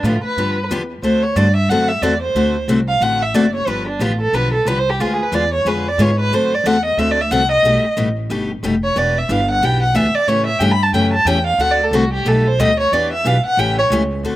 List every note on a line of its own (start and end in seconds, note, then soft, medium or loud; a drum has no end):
0.03 0.22 A2 loud
0.03 0.15 D3 medium
0.03 0.15 F3 medium
0.03 0.15 B3 loud
0.03 0.15 D4 medium
0.03 0.23 F4 medium
0.03 0.15 G4 medium
0.24 0.67 B4 medium
0.24 muted upright bass stroke soft
0.37 0.69 G2 medium
0.37 0.57 D3 medium
0.37 0.57 F3 medium
0.37 0.58 B3 medium
0.37 0.58 D4 medium
0.37 0.58 G4 medium
0.70 1.02 E2 medium
0.70 0.81 D3 medium
0.70 0.81 F3 loud
0.70 0.81 B3 loud
0.70 0.81 D4 loud
0.70 0.82 G4 loud
1.02 1.35 D2 medium
1.02 1.23 D3 medium
1.02 1.23 A3 medium
1.02 1.23 C4 medium
1.02 1.24 F#4 medium
1.02 1.24 A4 medium
1.02 1.24 C5 medium
1.22 1.38 C#5 medium
1.36 1.68 G2 loud
1.36 1.47 D3 medium
1.36 1.47 A3 medium
1.36 1.47 C4 medium
1.36 1.47 F#4 loud
1.36 1.47 A4 medium
1.36 1.56 D5 medium
1.56 1.70 E5 medium
1.68 2.01 F#2 medium
1.68 1.90 D3 medium
1.68 1.90 A3 medium
1.68 1.90 C4 medium
1.68 1.90 F#4 medium
1.68 1.90 A4 medium
1.68 1.90 F#5 medium
1.88 2.03 E5 medium
2.01 2.34 E2 medium
2.01 2.13 D3 loud
2.01 2.13 A3 loud
2.01 2.13 C4 medium
2.01 2.13 F#4 loud
2.01 2.13 A4 loud
2.01 2.21 D5 medium
2.22 2.65 C5 medium
2.35 2.67 D2 medium
2.35 2.55 D3 medium
2.35 2.55 A3 medium
2.35 2.56 C4 medium
2.35 2.56 F#4 medium
2.35 2.56 A4 medium
2.68 3.00 C2 medium
2.68 2.79 D3 medium
2.68 2.79 A3 medium
2.68 2.79 C4 medium
2.68 2.79 F#4 medium
2.68 2.79 A4 medium
2.88 3.03 F5 medium
3.00 3.33 A1 medium
3.00 3.21 D3 medium
3.00 3.21 A3 medium
3.00 3.22 C4 medium
3.00 3.22 F#4 medium
3.00 3.22 A4 medium
3.00 3.23 F#5 medium
3.22 3.36 E5 medium
3.34 3.66 F#1 medium
3.34 3.45 D3 medium
3.34 3.45 A3 loud
3.34 3.45 C4 loud
3.34 3.45 F#4 loud
3.34 3.45 A4 loud
3.34 3.54 D5 medium
3.55 3.69 C#5 medium
3.66 3.99 G1 medium
3.66 3.87 D3 medium
3.66 3.87 F3 medium
3.66 3.88 B3 medium
3.66 3.88 D4 medium
3.66 3.88 G4 medium
3.66 3.87 B4 medium
3.88 4.03 D4 medium
3.99 4.32 A1 loud
3.99 4.11 D3 medium
3.99 4.11 F3 medium
3.99 4.11 B3 loud
3.99 4.11 D4 medium
3.99 4.20 F4 medium
3.99 4.12 G4 loud
4.21 4.36 A4 medium
4.33 4.65 B1 medium
4.33 4.53 D3 medium
4.33 4.54 F3 medium
4.33 4.54 B3 medium
4.33 4.54 D4 medium
4.33 4.54 G4 medium
4.33 4.53 B4 medium
4.53 4.69 A4 medium
4.65 4.98 C2 medium
4.65 4.77 D3 medium
4.65 4.78 F3 medium
4.65 4.78 B3 loud
4.65 4.78 D4 loud
4.65 4.78 G4 loud
4.65 4.80 B4 medium
4.79 4.91 C5 medium
4.90 5.02 G4 medium
4.99 5.31 D2 medium
4.99 5.20 D3 medium
4.99 5.20 G#3 medium
4.99 5.20 B3 medium
4.99 5.14 F4 medium
4.99 5.20 F4 medium
4.99 5.20 G#4 medium
5.13 5.24 G#4 medium
5.23 5.36 B4 medium
5.32 5.64 E2 loud
5.32 5.43 D3 medium
5.32 5.43 G#3 medium
5.32 5.43 B3 medium
5.32 5.44 F4 medium
5.32 5.44 G#4 medium
5.32 5.53 D5 medium
5.54 5.69 C#5 medium
5.65 5.97 F2 medium
5.65 5.86 D3 medium
5.65 5.86 G#3 medium
5.65 5.86 B3 medium
5.65 5.86 F4 medium
5.65 5.86 G#4 medium
5.65 5.90 B4 medium
5.88 6.03 D5 medium
5.98 6.30 G#2 loud
5.98 6.09 D3 medium
5.98 6.10 G#3 medium
5.98 6.10 B3 loud
5.98 6.10 F4 loud
5.98 6.10 G#4 loud
5.98 6.19 C#5 medium
6.20 6.36 B4 loud
6.30 6.63 F#2 medium
6.30 6.52 D3 medium
6.30 6.52 A3 medium
6.30 6.52 C4 medium
6.30 6.52 F#4 medium
6.30 6.53 A4 medium
6.30 6.56 C5 medium
6.54 6.68 D5 medium
6.64 6.96 E2 loud
6.64 6.76 D3 medium
6.64 6.76 A3 loud
6.64 6.76 C4 loud
6.64 6.76 F#4 medium
6.64 6.76 A4 loud
6.64 6.85 F#5 loud
6.85 7.00 D#5 medium
6.97 7.29 D2 medium
6.97 7.18 D3 medium
6.97 7.18 A3 medium
6.97 7.18 C4 medium
6.97 7.18 F#4 medium
6.97 7.19 A4 medium
6.97 7.12 E5 medium
7.11 7.22 D5 medium
7.21 7.32 E5 medium
7.31 7.62 C2 medium
7.31 7.41 D3 loud
7.31 7.42 A3 medium
7.31 7.42 C4 loud
7.31 7.42 F#4 loud
7.31 7.42 A4 medium
7.31 7.50 F#5 loud
7.51 7.94 D#5 loud
7.63 7.81 B1 medium
7.63 7.84 B2 medium
7.63 7.84 G3 medium
7.63 7.85 A3 medium
7.63 7.85 D#4 medium
7.63 7.85 G4 medium
7.83 muted upright bass stroke soft
7.97 8.29 A1 medium
7.97 8.07 B2 medium
7.97 8.08 G3 medium
7.97 8.08 A3 loud
7.97 8.08 D#4 medium
7.97 8.08 G4 loud
8.30 8.62 G1 medium
8.30 8.50 B2 medium
8.30 8.50 G3 medium
8.30 8.50 A3 medium
8.30 8.50 D#4 medium
8.30 8.50 G4 medium
8.63 8.95 F1 medium
8.63 8.74 B2 medium
8.63 8.74 G3 loud
8.63 8.74 A3 loud
8.63 8.74 D#4 medium
8.63 8.74 G4 loud
8.83 8.99 C#5 medium
8.96 9.28 E1 medium
8.96 9.16 E3 medium
8.96 9.16 B3 medium
8.96 9.16 D4 medium
8.96 9.16 G4 medium
8.96 9.19 D5 medium
9.18 9.32 E5 medium
9.29 9.61 G1 loud
9.29 9.40 E3 medium
9.29 9.40 B3 medium
9.29 9.40 D4 medium
9.29 9.40 G4 medium
9.29 9.50 F5 medium
9.51 9.66 F#5 medium
9.61 9.93 B1 medium
9.61 9.82 E3 medium
9.61 9.82 B3 medium
9.61 9.82 D4 medium
9.61 9.82 G4 medium
9.61 9.82 G5 medium
9.82 9.97 F#5 medium
9.94 10.13 D2 medium
9.94 10.05 E3 medium
9.94 10.06 B3 medium
9.94 10.06 D4 loud
9.94 10.06 G4 loud
9.94 10.16 E5 medium
10.14 10.29 D5 medium
10.14 muted upright bass stroke soft
10.27 10.59 A2 medium
10.27 10.48 C#3 medium
10.27 10.48 E3 medium
10.27 10.48 A3 medium
10.27 10.48 C#4 medium
10.27 10.48 G4 medium
10.27 10.46 C#5 medium
10.46 10.61 E5 medium
10.59 10.92 G2 medium
10.59 10.71 C#3 loud
10.59 10.71 E3 medium
10.59 10.72 A3 medium
10.59 10.72 C#4 loud
10.59 10.72 G4 loud
10.59 10.73 G5 medium
10.71 10.84 B5 loud
10.83 10.93 A5 medium
10.93 11.24 F#2 medium
10.93 11.14 C#3 medium
10.93 11.14 E3 medium
10.93 11.14 A3 medium
10.93 11.14 C#4 medium
10.93 11.14 G4 medium
10.93 11.05 G5 medium
11.13 11.28 A5 medium
11.25 11.57 E2 medium
11.25 11.37 C#3 loud
11.25 11.37 E3 loud
11.25 11.38 A3 medium
11.25 11.38 C#4 loud
11.25 11.38 G4 loud
11.25 11.46 G5 loud
11.47 11.62 F5 medium
11.58 11.91 D2 medium
11.58 11.80 D3 medium
11.58 11.80 A3 medium
11.58 11.80 C4 medium
11.58 11.80 F#4 medium
11.58 11.80 A4 medium
11.58 11.73 F#5 medium
11.71 11.85 D5 medium
11.83 11.96 A4 medium
11.91 12.24 C2 medium
11.91 12.03 D3 medium
11.91 12.04 A3 loud
11.91 12.04 C4 medium
11.91 12.04 F#4 loud
11.91 12.13 F#4 medium
11.91 12.04 A4 loud
12.13 12.30 G4 medium
12.25 12.57 B1 medium
12.25 12.46 B2 medium
12.25 12.46 G3 medium
12.25 12.46 A3 medium
12.25 12.46 D#4 medium
12.25 12.46 G4 medium
12.25 12.49 A4 medium
12.47 12.61 C5 medium
12.59 12.91 D2 medium
12.59 12.70 B2 loud
12.59 12.70 G3 loud
12.59 12.70 A3 loud
12.59 12.70 D#4 loud
12.59 12.70 G4 loud
12.59 12.79 D#5 loud
12.80 12.94 C#5 medium
12.92 13.24 E2 medium
12.92 13.12 E3 medium
12.92 13.12 B3 medium
12.92 13.12 D4 medium
12.92 13.13 G4 medium
12.92 13.12 D5 medium
13.13 13.29 E5 medium
13.24 13.43 B1 loud
13.24 13.36 E3 medium
13.24 13.36 B3 medium
13.24 13.36 D4 loud
13.24 13.36 G4 loud
13.24 13.45 F5 medium
13.46 13.61 F#5 loud
13.57 13.89 A1 medium
13.57 13.78 C#3 medium
13.57 13.78 E3 medium
13.57 13.78 A3 medium
13.57 13.78 C#4 medium
13.57 13.79 G4 medium
13.57 13.78 G5 loud
13.78 13.86 C#5 medium
13.90 14.22 C#2 loud
13.90 14.02 C#3 loud
13.90 14.02 E3 loud
13.90 14.02 A3 loud
13.90 14.02 C#4 loud
13.90 14.02 G4 loud
14.23 14.36 D2 medium
14.23 14.36 D3 medium
14.23 14.36 A3 medium
14.23 14.36 C4 medium
14.23 14.36 F#4 medium
14.23 14.36 A4 medium